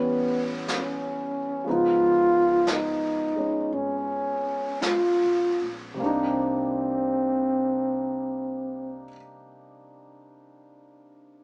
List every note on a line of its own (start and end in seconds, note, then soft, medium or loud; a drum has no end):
0.00 1.62 A1 medium
0.00 1.66 E3 soft
0.00 1.66 G3 soft
0.00 0.65 B3 medium
0.00 1.66 B3 soft
0.00 1.66 C#4 soft
0.68 snare soft
0.68 hi-hat pedal soft
0.75 1.74 C#4 medium
1.64 3.69 C#2 medium
1.64 5.99 F3 soft
1.64 3.34 G#3 soft
1.64 6.01 B3 soft
1.64 brush sweep soft
1.69 6.02 D#4 soft
1.69 2.73 F4 medium
2.67 snare soft
2.67 hi-hat pedal soft
2.71 3.75 D#4 medium
3.36 5.99 G#3 soft
3.36 6.01 C#4 soft
3.72 5.17 G#1 medium
3.72 4.84 C#4 medium
3.72 brush sweep soft
4.82 5.79 F4 medium
4.82 snare soft
4.82 hi-hat pedal soft
5.22 5.58 B1 soft
5.61 5.98 A#1 soft
5.94 9.03 C3 soft
5.94 9.06 G3 soft
6.00 9.05 C2 medium
6.00 9.09 A#3 soft
6.00 9.06 C4 medium
6.00 9.12 D4 soft
6.06 9.15 D#4 medium